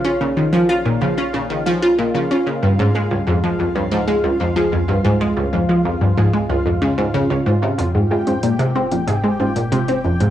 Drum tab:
HH |----------------|----------------|----------------|x--xxx-xx--xxx-x|
CG |----------------|----------------|----------------|o--o---o--o---o-|